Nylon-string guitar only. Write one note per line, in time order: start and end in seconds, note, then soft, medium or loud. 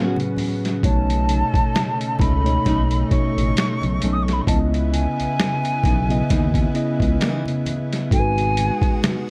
0.00 0.16 B3 medium
0.00 0.16 C#4 loud
0.00 0.17 F#4 medium
2.21 2.33 A3 medium
2.21 2.33 C#4 medium
2.21 2.34 D#4 medium
2.66 2.81 A3 medium
2.66 2.82 C#4 medium
2.66 2.82 D#4 medium
4.03 4.15 A3 medium
4.03 4.15 C#4 medium
4.03 4.16 D#4 medium
5.84 5.96 E3 medium
5.84 5.97 B3 medium
5.84 5.97 D#4 medium
6.30 6.45 E3 medium
6.30 6.45 B3 medium
6.30 6.46 D#4 medium
7.20 7.42 E3 medium
7.20 7.43 B3 medium
7.20 7.43 D#4 medium